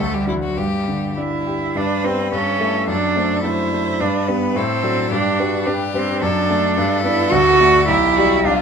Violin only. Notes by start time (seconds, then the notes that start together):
0.00 A4
0.14 G4
0.28 E4
0.43 F#4
0.58 G4
1.77 B4
2.33 A4
2.90 A4
3.46 C5
4.02 B4
4.57 A4
5.12 G4
5.40 F#4
5.67 G4
6.22 A4
6.77 A4
7.88 G4
8.17 F#4
8.45 F4